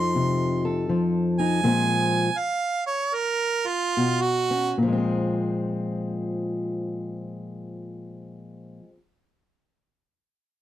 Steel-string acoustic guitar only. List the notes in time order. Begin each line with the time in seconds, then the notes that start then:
Already playing: F2 F3 D#4 A4
0.15 C3
0.65 A4
0.89 F3
1.40 D#4
1.63 A#2 F3 G#3 C4 G#4
3.97 B2
4.51 C#4
4.78 A#2
4.83 F3
4.88 G#3
4.93 C4
4.98 G#4